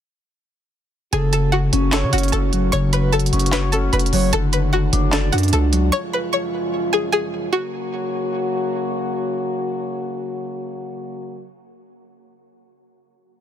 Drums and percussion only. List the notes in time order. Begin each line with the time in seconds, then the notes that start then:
1.13 closed hi-hat
1.33 closed hi-hat
1.73 closed hi-hat
1.92 snare, clap, closed hi-hat
2.13 closed hi-hat
2.18 closed hi-hat
2.23 closed hi-hat
2.28 closed hi-hat
2.33 closed hi-hat
2.53 closed hi-hat
2.73 closed hi-hat
2.93 closed hi-hat
3.13 closed hi-hat
3.19 closed hi-hat
3.26 closed hi-hat
3.33 closed hi-hat
3.39 closed hi-hat
3.46 closed hi-hat
3.52 snare, clap, closed hi-hat
3.73 closed hi-hat
3.93 closed hi-hat
3.99 closed hi-hat
4.06 closed hi-hat
4.13 open hi-hat
4.33 closed hi-hat
4.53 closed hi-hat
4.93 closed hi-hat
5.12 snare, clap, closed hi-hat
5.33 closed hi-hat
5.38 closed hi-hat
5.43 closed hi-hat
5.48 closed hi-hat
5.53 closed hi-hat
5.73 closed hi-hat